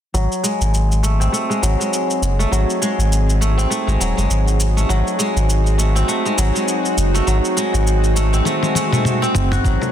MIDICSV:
0, 0, Header, 1, 5, 480
1, 0, Start_track
1, 0, Tempo, 594059
1, 115, Time_signature, 4, 2, 24, 8
1, 8014, End_track
2, 0, Start_track
2, 0, Title_t, "Synth drone"
2, 0, Program_c, 0, 95
2, 364, Note_on_c, 0, 66, 79
2, 594, Note_on_c, 0, 60, 84
2, 750, Note_on_c, 0, 68, 68
2, 786, Note_on_c, 0, 63, 82
2, 8014, Note_off_c, 0, 60, 0
2, 8014, Note_off_c, 0, 63, 0
2, 8014, Note_off_c, 0, 66, 0
2, 8014, Note_off_c, 0, 68, 0
2, 8014, End_track
3, 0, Start_track
3, 0, Title_t, "Kora"
3, 0, Program_c, 1, 46
3, 113, Note_on_c, 1, 54, 66
3, 351, Note_on_c, 1, 56, 68
3, 831, Note_on_c, 1, 57, 64
3, 970, Note_on_c, 1, 60, 68
3, 1067, Note_off_c, 1, 57, 0
3, 1070, Note_on_c, 1, 57, 74
3, 1199, Note_off_c, 1, 56, 0
3, 1209, Note_on_c, 1, 56, 64
3, 1257, Note_off_c, 1, 57, 0
3, 1302, Note_off_c, 1, 54, 0
3, 1312, Note_on_c, 1, 54, 63
3, 1441, Note_off_c, 1, 56, 0
3, 1451, Note_on_c, 1, 56, 62
3, 1933, Note_on_c, 1, 57, 72
3, 2023, Note_off_c, 1, 54, 0
3, 2033, Note_on_c, 1, 54, 62
3, 2266, Note_off_c, 1, 56, 0
3, 2276, Note_on_c, 1, 56, 71
3, 2325, Note_off_c, 1, 57, 0
3, 2425, Note_off_c, 1, 60, 0
3, 2755, Note_on_c, 1, 57, 66
3, 2890, Note_on_c, 1, 60, 72
3, 2989, Note_off_c, 1, 57, 0
3, 2992, Note_on_c, 1, 57, 78
3, 3120, Note_off_c, 1, 56, 0
3, 3130, Note_on_c, 1, 56, 64
3, 3178, Note_off_c, 1, 57, 0
3, 3225, Note_off_c, 1, 54, 0
3, 3235, Note_on_c, 1, 54, 65
3, 3361, Note_off_c, 1, 56, 0
3, 3371, Note_on_c, 1, 56, 63
3, 3852, Note_on_c, 1, 57, 73
3, 3943, Note_off_c, 1, 54, 0
3, 3952, Note_on_c, 1, 54, 73
3, 4182, Note_off_c, 1, 56, 0
3, 4191, Note_on_c, 1, 56, 69
3, 4240, Note_off_c, 1, 57, 0
3, 4345, Note_off_c, 1, 60, 0
3, 4672, Note_on_c, 1, 57, 65
3, 4812, Note_on_c, 1, 60, 76
3, 4910, Note_off_c, 1, 57, 0
3, 4913, Note_on_c, 1, 57, 78
3, 5044, Note_off_c, 1, 56, 0
3, 5054, Note_on_c, 1, 56, 71
3, 5102, Note_off_c, 1, 57, 0
3, 5145, Note_off_c, 1, 54, 0
3, 5155, Note_on_c, 1, 54, 72
3, 5283, Note_off_c, 1, 56, 0
3, 5293, Note_on_c, 1, 56, 69
3, 5773, Note_on_c, 1, 57, 71
3, 5864, Note_off_c, 1, 54, 0
3, 5873, Note_on_c, 1, 54, 74
3, 6105, Note_off_c, 1, 56, 0
3, 6115, Note_on_c, 1, 56, 74
3, 6163, Note_off_c, 1, 57, 0
3, 6267, Note_off_c, 1, 60, 0
3, 6592, Note_on_c, 1, 57, 68
3, 6731, Note_on_c, 1, 60, 75
3, 6830, Note_off_c, 1, 57, 0
3, 6833, Note_on_c, 1, 57, 78
3, 6963, Note_off_c, 1, 56, 0
3, 6972, Note_on_c, 1, 56, 63
3, 7021, Note_off_c, 1, 57, 0
3, 7075, Note_on_c, 1, 57, 68
3, 7212, Note_off_c, 1, 57, 0
3, 7215, Note_on_c, 1, 57, 71
3, 7448, Note_off_c, 1, 60, 0
3, 7451, Note_on_c, 1, 60, 94
3, 7690, Note_on_c, 1, 66, 79
3, 7764, Note_off_c, 1, 54, 0
3, 7793, Note_on_c, 1, 54, 69
3, 7835, Note_off_c, 1, 56, 0
3, 8014, Note_off_c, 1, 54, 0
3, 8014, Note_off_c, 1, 57, 0
3, 8014, Note_off_c, 1, 60, 0
3, 8014, Note_off_c, 1, 66, 0
3, 8014, End_track
4, 0, Start_track
4, 0, Title_t, "Sub bass"
4, 0, Program_c, 2, 38
4, 112, Note_on_c, 2, 32, 99
4, 220, Note_off_c, 2, 32, 0
4, 491, Note_on_c, 2, 32, 77
4, 1036, Note_off_c, 2, 32, 0
4, 1313, Note_on_c, 2, 32, 86
4, 1420, Note_off_c, 2, 32, 0
4, 1792, Note_on_c, 2, 30, 85
4, 1987, Note_off_c, 2, 30, 0
4, 2032, Note_on_c, 2, 32, 94
4, 2140, Note_off_c, 2, 32, 0
4, 2409, Note_on_c, 2, 32, 73
4, 2956, Note_off_c, 2, 32, 0
4, 3129, Note_on_c, 2, 32, 87
4, 3209, Note_off_c, 2, 32, 0
4, 3231, Note_on_c, 2, 27, 96
4, 3339, Note_off_c, 2, 27, 0
4, 3372, Note_on_c, 2, 30, 99
4, 3451, Note_off_c, 2, 30, 0
4, 3472, Note_on_c, 2, 32, 85
4, 3916, Note_off_c, 2, 32, 0
4, 3950, Note_on_c, 2, 32, 101
4, 4059, Note_off_c, 2, 32, 0
4, 4331, Note_on_c, 2, 32, 77
4, 4876, Note_off_c, 2, 32, 0
4, 5154, Note_on_c, 2, 32, 98
4, 5261, Note_off_c, 2, 32, 0
4, 5632, Note_on_c, 2, 30, 87
4, 5827, Note_off_c, 2, 30, 0
4, 5872, Note_on_c, 2, 32, 97
4, 5980, Note_off_c, 2, 32, 0
4, 6251, Note_on_c, 2, 32, 85
4, 6796, Note_off_c, 2, 32, 0
4, 7552, Note_on_c, 2, 30, 78
4, 7747, Note_off_c, 2, 30, 0
4, 7794, Note_on_c, 2, 32, 98
4, 7901, Note_off_c, 2, 32, 0
4, 8014, End_track
5, 0, Start_track
5, 0, Title_t, "Drums"
5, 118, Note_on_c, 9, 82, 35
5, 199, Note_off_c, 9, 82, 0
5, 257, Note_on_c, 9, 82, 19
5, 338, Note_off_c, 9, 82, 0
5, 358, Note_on_c, 9, 82, 67
5, 439, Note_off_c, 9, 82, 0
5, 496, Note_on_c, 9, 82, 30
5, 576, Note_off_c, 9, 82, 0
5, 599, Note_on_c, 9, 82, 40
5, 680, Note_off_c, 9, 82, 0
5, 739, Note_on_c, 9, 82, 20
5, 820, Note_off_c, 9, 82, 0
5, 839, Note_on_c, 9, 82, 65
5, 920, Note_off_c, 9, 82, 0
5, 979, Note_on_c, 9, 82, 29
5, 1060, Note_off_c, 9, 82, 0
5, 1082, Note_on_c, 9, 82, 38
5, 1163, Note_off_c, 9, 82, 0
5, 1221, Note_on_c, 9, 82, 19
5, 1302, Note_off_c, 9, 82, 0
5, 1320, Note_on_c, 9, 82, 76
5, 1401, Note_off_c, 9, 82, 0
5, 1461, Note_on_c, 9, 82, 30
5, 1542, Note_off_c, 9, 82, 0
5, 1561, Note_on_c, 9, 82, 38
5, 1642, Note_off_c, 9, 82, 0
5, 1700, Note_on_c, 9, 82, 21
5, 1780, Note_off_c, 9, 82, 0
5, 1801, Note_on_c, 9, 82, 62
5, 1882, Note_off_c, 9, 82, 0
5, 1940, Note_on_c, 9, 82, 29
5, 2020, Note_off_c, 9, 82, 0
5, 2042, Note_on_c, 9, 82, 41
5, 2123, Note_off_c, 9, 82, 0
5, 2180, Note_on_c, 9, 82, 20
5, 2261, Note_off_c, 9, 82, 0
5, 2281, Note_on_c, 9, 82, 75
5, 2362, Note_off_c, 9, 82, 0
5, 2422, Note_on_c, 9, 82, 32
5, 2502, Note_off_c, 9, 82, 0
5, 2524, Note_on_c, 9, 82, 44
5, 2604, Note_off_c, 9, 82, 0
5, 2662, Note_on_c, 9, 82, 22
5, 2743, Note_off_c, 9, 82, 0
5, 2763, Note_on_c, 9, 82, 66
5, 2844, Note_off_c, 9, 82, 0
5, 2900, Note_on_c, 9, 82, 32
5, 2981, Note_off_c, 9, 82, 0
5, 3002, Note_on_c, 9, 82, 41
5, 3083, Note_off_c, 9, 82, 0
5, 3140, Note_on_c, 9, 82, 20
5, 3221, Note_off_c, 9, 82, 0
5, 3242, Note_on_c, 9, 82, 73
5, 3322, Note_off_c, 9, 82, 0
5, 3380, Note_on_c, 9, 82, 31
5, 3461, Note_off_c, 9, 82, 0
5, 3479, Note_on_c, 9, 82, 42
5, 3560, Note_off_c, 9, 82, 0
5, 3617, Note_on_c, 9, 82, 22
5, 3697, Note_off_c, 9, 82, 0
5, 3717, Note_on_c, 9, 82, 67
5, 3798, Note_off_c, 9, 82, 0
5, 3857, Note_on_c, 9, 82, 30
5, 3938, Note_off_c, 9, 82, 0
5, 3959, Note_on_c, 9, 82, 44
5, 4040, Note_off_c, 9, 82, 0
5, 4099, Note_on_c, 9, 82, 19
5, 4179, Note_off_c, 9, 82, 0
5, 4198, Note_on_c, 9, 82, 71
5, 4279, Note_off_c, 9, 82, 0
5, 4338, Note_on_c, 9, 82, 30
5, 4419, Note_off_c, 9, 82, 0
5, 4440, Note_on_c, 9, 82, 42
5, 4521, Note_off_c, 9, 82, 0
5, 4576, Note_on_c, 9, 82, 21
5, 4657, Note_off_c, 9, 82, 0
5, 4680, Note_on_c, 9, 82, 69
5, 4761, Note_off_c, 9, 82, 0
5, 4817, Note_on_c, 9, 82, 30
5, 4898, Note_off_c, 9, 82, 0
5, 4920, Note_on_c, 9, 82, 43
5, 5000, Note_off_c, 9, 82, 0
5, 5057, Note_on_c, 9, 82, 19
5, 5137, Note_off_c, 9, 82, 0
5, 5157, Note_on_c, 9, 82, 80
5, 5238, Note_off_c, 9, 82, 0
5, 5298, Note_on_c, 9, 82, 31
5, 5379, Note_off_c, 9, 82, 0
5, 5397, Note_on_c, 9, 82, 46
5, 5478, Note_off_c, 9, 82, 0
5, 5536, Note_on_c, 9, 82, 22
5, 5617, Note_off_c, 9, 82, 0
5, 5639, Note_on_c, 9, 82, 68
5, 5720, Note_off_c, 9, 82, 0
5, 5778, Note_on_c, 9, 82, 33
5, 5858, Note_off_c, 9, 82, 0
5, 5878, Note_on_c, 9, 82, 40
5, 5959, Note_off_c, 9, 82, 0
5, 6017, Note_on_c, 9, 82, 21
5, 6098, Note_off_c, 9, 82, 0
5, 6120, Note_on_c, 9, 82, 71
5, 6200, Note_off_c, 9, 82, 0
5, 6257, Note_on_c, 9, 82, 34
5, 6338, Note_off_c, 9, 82, 0
5, 6359, Note_on_c, 9, 82, 43
5, 6440, Note_off_c, 9, 82, 0
5, 6495, Note_on_c, 9, 82, 21
5, 6576, Note_off_c, 9, 82, 0
5, 6597, Note_on_c, 9, 82, 74
5, 6677, Note_off_c, 9, 82, 0
5, 6735, Note_on_c, 9, 82, 33
5, 6816, Note_off_c, 9, 82, 0
5, 6830, Note_on_c, 9, 48, 59
5, 6838, Note_on_c, 9, 82, 43
5, 6911, Note_off_c, 9, 48, 0
5, 6919, Note_off_c, 9, 82, 0
5, 6970, Note_on_c, 9, 48, 53
5, 6978, Note_on_c, 9, 82, 20
5, 7051, Note_off_c, 9, 48, 0
5, 7059, Note_off_c, 9, 82, 0
5, 7072, Note_on_c, 9, 48, 74
5, 7080, Note_on_c, 9, 82, 78
5, 7153, Note_off_c, 9, 48, 0
5, 7160, Note_off_c, 9, 82, 0
5, 7212, Note_on_c, 9, 47, 62
5, 7219, Note_on_c, 9, 82, 31
5, 7293, Note_off_c, 9, 47, 0
5, 7300, Note_off_c, 9, 82, 0
5, 7313, Note_on_c, 9, 47, 85
5, 7320, Note_on_c, 9, 82, 41
5, 7393, Note_off_c, 9, 47, 0
5, 7401, Note_off_c, 9, 82, 0
5, 7460, Note_on_c, 9, 82, 23
5, 7541, Note_off_c, 9, 82, 0
5, 7552, Note_on_c, 9, 45, 83
5, 7560, Note_on_c, 9, 82, 70
5, 7633, Note_off_c, 9, 45, 0
5, 7640, Note_off_c, 9, 82, 0
5, 7690, Note_on_c, 9, 45, 83
5, 7697, Note_on_c, 9, 82, 32
5, 7771, Note_off_c, 9, 45, 0
5, 7778, Note_off_c, 9, 82, 0
5, 7794, Note_on_c, 9, 36, 103
5, 7799, Note_on_c, 9, 82, 43
5, 7875, Note_off_c, 9, 36, 0
5, 7880, Note_off_c, 9, 82, 0
5, 7930, Note_on_c, 9, 64, 68
5, 7938, Note_on_c, 9, 82, 19
5, 8011, Note_off_c, 9, 64, 0
5, 8014, Note_off_c, 9, 82, 0
5, 8014, End_track
0, 0, End_of_file